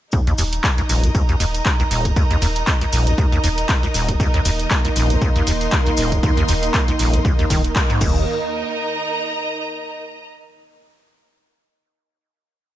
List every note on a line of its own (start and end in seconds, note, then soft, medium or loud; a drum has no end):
0.12 0.21 D#2 medium
0.12 8.00 D#4 medium
0.12 kick loud
0.12 cabasa soft
0.27 0.33 D#2 loud
0.27 closed hi-hat soft
0.27 cabasa soft
0.38 0.59 D#1 medium
0.38 0.43 D#2 loud
0.38 open hi-hat medium
0.38 cabasa medium
0.44 5.07 A#5 medium
0.52 closed hi-hat medium
0.52 cabasa soft
0.58 8.01 A#4 medium
0.58 8.01 D#5 medium
0.64 kick loud
0.64 clap loud
0.64 cabasa soft
0.78 0.82 C#2 loud
0.78 closed hi-hat soft
0.78 cabasa soft
0.89 1.05 D#1 medium
0.89 1.10 A#1 medium
0.89 open hi-hat medium
0.89 cabasa medium
1.03 1.10 G#2 loud
1.03 closed hi-hat medium
1.03 cabasa soft
1.15 1.23 D#2 medium
1.15 kick loud
1.15 cabasa soft
1.29 1.35 D#2 loud
1.29 closed hi-hat soft
1.29 cabasa soft
1.40 1.61 D#1 loud
1.40 1.45 D#2 medium
1.40 open hi-hat loud
1.40 cabasa medium
1.54 closed hi-hat medium
1.54 cabasa soft
1.66 kick loud
1.66 clap loud
1.66 cabasa soft
1.80 1.83 C#2 medium
1.80 closed hi-hat soft
1.80 cabasa soft
1.91 2.07 D#1 loud
1.91 2.12 D#1 medium
1.91 open hi-hat loud
1.91 cabasa medium
2.05 2.11 G#2 medium
2.05 kick medium
2.05 closed hi-hat medium
2.05 cabasa soft
2.16 2.24 D#2 medium
2.16 kick loud
2.16 cabasa soft
2.31 2.37 D#2 medium
2.31 closed hi-hat soft
2.31 cabasa soft
2.42 2.63 D#1 loud
2.42 2.47 D#2 loud
2.42 open hi-hat loud
2.42 cabasa medium
2.56 closed hi-hat medium
2.56 cabasa soft
2.67 kick loud
2.67 clap loud
2.67 cabasa soft
2.81 2.85 C#2 medium
2.81 closed hi-hat soft
2.81 cabasa soft
2.93 3.08 D#1 loud
2.93 3.14 A#1 medium
2.93 open hi-hat loud
2.93 cabasa medium
3.07 3.13 G#2 loud
3.07 closed hi-hat medium
3.07 cabasa soft
3.18 3.26 D#2 medium
3.18 kick loud
3.18 cabasa soft
3.32 3.39 D#2 medium
3.32 closed hi-hat soft
3.32 cabasa soft
3.44 3.65 D#1 loud
3.44 3.48 D#2 medium
3.44 open hi-hat loud
3.44 cabasa medium
3.58 closed hi-hat medium
3.58 cabasa soft
3.69 kick loud
3.69 clap loud
3.69 cabasa soft
3.83 3.87 C#2 medium
3.83 closed hi-hat soft
3.83 cabasa soft
3.94 4.10 D#1 loud
3.94 4.15 D#1 medium
3.94 open hi-hat loud
3.94 cabasa loud
4.09 4.15 G#2 medium
4.09 kick medium
4.09 closed hi-hat medium
4.09 cabasa soft
4.20 4.28 D#2 medium
4.20 7.97 D#3 medium
4.20 7.97 A#3 medium
4.20 7.97 D#4 medium
4.20 kick loud
4.20 cabasa medium
4.34 4.40 D#2 loud
4.34 closed hi-hat soft
4.34 cabasa soft
4.45 4.66 D#1 loud
4.45 4.50 D#2 loud
4.45 open hi-hat loud
4.45 cabasa loud
4.59 closed hi-hat medium
4.59 cabasa soft
4.71 kick loud
4.71 clap loud
4.71 cabasa soft
4.85 4.89 C#2 loud
4.85 closed hi-hat soft
4.85 cabasa soft
4.91 8.01 C6 medium
4.96 5.12 D#1 loud
4.96 5.17 A#1 medium
4.96 open hi-hat loud
4.96 cabasa loud
5.10 5.17 G#2 loud
5.10 closed hi-hat medium
5.10 cabasa soft
5.22 5.29 D#2 medium
5.22 kick loud
5.22 cabasa soft
5.36 5.42 D#2 medium
5.36 closed hi-hat soft
5.36 cabasa soft
5.47 5.68 D#1 medium
5.47 5.52 D#2 medium
5.47 open hi-hat loud
5.47 cabasa loud
5.61 closed hi-hat medium
5.61 cabasa soft
5.71 kick loud
5.71 clap loud
5.71 cabasa medium
5.86 5.90 C#2 loud
5.86 closed hi-hat soft
5.86 cabasa soft
5.97 6.13 D#1 loud
5.97 6.19 D#1 medium
5.97 open hi-hat loud
5.97 cabasa loud
6.12 6.18 G#2 medium
6.12 kick medium
6.12 closed hi-hat medium
6.12 cabasa soft
6.23 6.31 D#2 medium
6.23 kick loud
6.23 cabasa medium
6.37 6.43 D#2 loud
6.37 closed hi-hat soft
6.37 cabasa soft
6.48 6.70 D#1 medium
6.48 6.53 D#2 loud
6.48 open hi-hat loud
6.48 cabasa loud
6.63 closed hi-hat medium
6.63 cabasa soft
6.74 kick loud
6.74 clap loud
6.74 cabasa soft
6.88 6.92 C#2 loud
6.88 closed hi-hat soft
6.88 cabasa soft
6.99 7.15 D#1 loud
6.99 7.20 A#1 medium
6.99 open hi-hat loud
6.99 cabasa medium
7.13 7.20 G#2 loud
7.13 closed hi-hat medium
7.13 cabasa soft
7.25 7.33 D#2 medium
7.25 kick loud
7.25 cabasa soft
7.39 7.45 D#2 loud
7.39 closed hi-hat soft
7.39 cabasa soft
7.50 7.71 D#1 loud
7.50 7.62 D#3 medium
7.50 kick medium
7.50 open hi-hat loud
7.50 cabasa medium
7.64 closed hi-hat medium
7.64 cabasa soft
7.76 kick loud
7.76 clap loud
7.76 cabasa medium
7.90 8.01 G#2 medium
7.90 closed hi-hat soft
7.90 cabasa soft
8.01 8.25 D#1 loud
8.01 8.25 D#2 medium
8.01 8.25 D#3 medium
8.01 8.25 A#3 medium
8.01 10.01 D#4 medium
8.01 8.25 A#4 medium
8.01 8.25 D#5 medium
8.01 kick loud
8.01 crash medium
8.01 cabasa medium
8.10 10.00 A#4 medium
8.15 cabasa soft
8.43 10.26 D#5 medium
8.50 10.26 A#5 medium